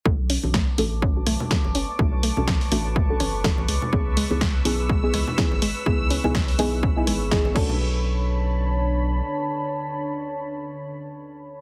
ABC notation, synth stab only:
X:1
M:4/4
L:1/16
Q:"Swing 16ths" 1/4=124
K:Bdor
V:1 name="Synth stab"
[CDFA]3 [CDFA] z2 [CDFA]3 [CDFA]3 [CDFA] z3 | [CDFA]3 [CDFA] z2 [CDFA]3 [CDFA]3 [CDFA] z3 | [B,^DEG]3 [B,DEG] z2 [B,DEG]3 [B,DEG]3 [B,DEG] z3 | [B,^DEG]3 [B,DEG] z2 [B,DEG]3 [B,DEG]3 [B,DEG] z [C=DFA]2- |
[CDFA]16- | [CDFA]16 |]